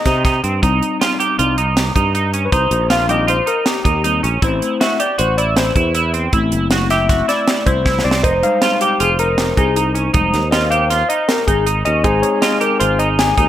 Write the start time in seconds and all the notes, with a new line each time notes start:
Already playing: D#5
0.05 C3 D#4, kick, snare, closed hi-hat
0.25 D#4, kick, snare, closed hi-hat
0.44 G2 C4, closed hi-hat
0.63 C2 G3 C4 D#4, kick, closed hi-hat
0.83 closed hi-hat
1.01 F4, snare, closed hi-hat
1.20 G4, closed hi-hat
1.38 C2 G3 C4 D#4 F4, closed hi-hat
1.58 D#4, closed hi-hat
1.77 snare, closed hi-hat
1.95 G2 D#4, kick, closed hi-hat
2.15 D#4, closed hi-hat
2.34 C#4, closed hi-hat
2.45 B4
2.52 C2 D#4 C5, kick, closed hi-hat
2.71 A#1, closed hi-hat
2.90 F4 F5, snare, closed hi-hat
3.08 G3 C4 D#4 G4 D#5, closed hi-hat
3.27 F4 C5, closed hi-hat
3.46 D#4 A#4, closed hi-hat
3.66 G4, snare, closed hi-hat
3.84 D#2 D#4, kick, closed hi-hat
4.04 G3 C4 D#4, closed hi-hat
4.23 A#1 C#4, closed hi-hat
4.42 A1 A3 C4 E4 C5, kick, closed hi-hat
4.62 closed hi-hat
4.81 F#4 E5, snare, closed hi-hat
5.00 G4 D5, closed hi-hat
5.18 A1 F#4 C5, closed hi-hat
5.38 E4 D5, closed hi-hat
5.57 C5, snare, closed hi-hat
5.76 E2 E4, kick, closed hi-hat
5.95 E4, closed hi-hat
6.14 C4, closed hi-hat
6.32 A1 A3 C4 E4, kick, closed hi-hat
6.52 F#1, closed hi-hat
6.71 F#4, snare, closed hi-hat
6.90 G4 E5, snare, closed hi-hat
7.09 F#4, kick, snare, closed hi-hat
7.28 E4 D5, snare, closed hi-hat
7.48 snare, closed hi-hat
7.66 C2 E4 C5, kick, closed hi-hat
7.85 E4, kick, snare
7.99 snare
8.04 C2 C4 D5
8.11 snare
8.23 F1 D#4 C5 D#5, kick, closed hi-hat
8.43 G3 G#3 D#4 F5, closed hi-hat
8.62 F4, snare, closed hi-hat
8.81 G4, closed hi-hat
9.00 F1 F4 G#4, closed hi-hat
9.19 D#4 A#4, closed hi-hat
9.38 snare, closed hi-hat
9.57 C2 D#4 G#4, kick, closed hi-hat
9.76 D#4, closed hi-hat
9.95 C#4, closed hi-hat
10.13 F1 G3 G#3 D#4, kick, closed hi-hat
10.34 D#2, snare, closed hi-hat
10.51 F4 D#5, snare, closed hi-hat
10.70 G4 F5, closed hi-hat
10.90 F4, snare, closed hi-hat
11.09 D#4 D#5, closed hi-hat
11.28 A#4, snare, closed hi-hat
11.47 G#1 D#4 G#4, kick, closed hi-hat
11.66 D#4, closed hi-hat
11.85 D#2 C#4 D#5, closed hi-hat
12.03 G#1 G#3 C4 D#4 G#4 C5, kick, closed hi-hat
12.22 C#5, closed hi-hat
12.42 F4 D#5, snare, closed hi-hat
12.61 G4 A#4, closed hi-hat
12.80 G#1 F4 C5, closed hi-hat
12.99 D#4 D#5, closed hi-hat
13.19 G#5, snare, closed hi-hat
13.37 D#2 D#4, kick, closed hi-hat